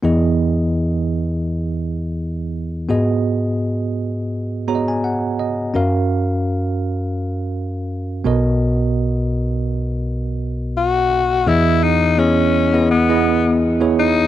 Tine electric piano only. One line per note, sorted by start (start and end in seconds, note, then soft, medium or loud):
0.03 2.86 E2 medium
0.03 2.86 E3 medium
0.03 2.85 B3 medium
0.03 2.86 E4 medium
0.03 2.86 G#4 medium
0.03 2.86 D#5 medium
2.89 5.72 G#2 medium
2.89 4.64 B3 medium
2.89 4.65 F#4 medium
2.89 4.65 G#4 medium
2.89 4.65 D#5 medium
4.68 5.75 B3 medium
4.68 5.73 F#4 soft
4.68 5.76 G#4 soft
4.68 4.76 C#5 soft
4.68 4.87 A#5 medium
4.75 5.38 D#5 medium
4.88 5.03 G#5 medium
5.04 5.37 F#5 medium
5.39 5.73 D#5 medium
5.74 8.21 F#2 medium
5.74 8.21 C#4 medium
5.74 8.21 F#4 medium
5.74 8.22 A#4 medium
5.74 8.22 F5 medium
8.24 11.07 B1 medium
8.24 11.07 B2 medium
8.24 11.07 B3 medium
8.24 11.07 F#4 medium
8.24 11.08 A#4 medium
8.24 11.08 D#5 medium
11.47 14.27 E2 medium
11.47 14.27 E3 medium
11.47 11.93 B3 medium
11.47 11.93 E4 medium
11.47 11.93 G#4 medium
11.47 11.93 D#5 medium
12.18 12.52 B3 medium
12.18 12.52 E4 medium
12.18 12.53 G#4 medium
12.18 12.53 D#5 medium
12.73 12.95 B3 medium
12.73 12.95 E4 medium
12.73 12.95 G#4 medium
12.73 12.95 D#5 medium
13.09 13.53 B3 medium
13.09 13.54 E4 medium
13.09 13.54 G#4 medium
13.09 13.54 D#5 medium
13.80 14.14 B3 medium
13.80 14.15 E4 medium
13.80 14.15 G#4 medium
13.80 14.15 C#5 medium